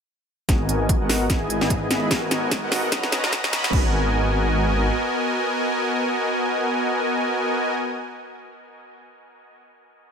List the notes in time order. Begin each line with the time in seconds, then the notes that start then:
0.49 G#1 B3 F#4 A#4 D#5 G#5, kick, snare, closed hi-hat
0.69 G#1 B3 F#4 A#4 D#5 G#5, closed hi-hat
0.89 kick, closed hi-hat
1.01 G#1 B3 F#4 A#4 D#5 F#5
1.10 snare, open hi-hat
1.30 G#1 B3 E4 G#4 D#5 G#5, kick, snare, closed hi-hat
1.50 closed hi-hat
1.61 G#1 B3 E4 G#4 D#5 G#5, snare
1.70 kick, closed hi-hat
1.91 G#1 B3 E4 G#4 D#5 B5, snare, closed hi-hat
2.11 G#1 B3 F#4 A#4 D#5 G#5, kick, snare, closed hi-hat
2.31 G#1 B3 F#4 A#4 D#5 G#5, snare, closed hi-hat
2.51 kick, snare, closed hi-hat
2.63 G#1 B3 F#4 A#4 D#5 F#5
2.72 snare, open hi-hat
2.92 B1 C#4 F#4 B4 D#5 A#5, kick, snare, closed hi-hat
3.03 snare
3.12 snare, closed hi-hat
3.23 B1 C#4 F#4 B4 D#5 A#5, snare
3.33 kick, snare, closed hi-hat
3.44 snare
3.53 B1 C#4 F#4 B4 D#5 B5, snare, closed hi-hat
3.64 snare
3.73 G#1 B3 F#4 A#4 D#5 G#5, kick, crash